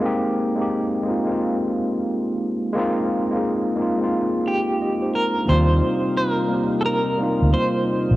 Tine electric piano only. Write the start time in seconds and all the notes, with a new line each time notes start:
0.00 G#3 A#3 C4
0.05 D#4 G4
0.56 G#3 A#3 C4
0.60 D#4 G4
1.03 G#3 A#3 C4
1.08 D#4 F4
1.25 G#3 A#3 C4
1.30 D#4 F4
2.73 G#3 A#3 C4
2.78 D#4 F4
3.31 G#3 A#3 C4
3.36 D#4 G#4
3.76 G#3 A#3 C4
3.80 D#4 F4
3.98 G#3 A#3 C4
4.03 D#4 F4
4.81 G4 D#5
5.02 D#4 C5
5.37 D4
5.45 F3 A#3 C4
5.50 G3 D#4 F4
6.48 G3 A#3 C4
6.53 D#4 G4
7.17 G3 A#3 C4
7.21 D#4 F4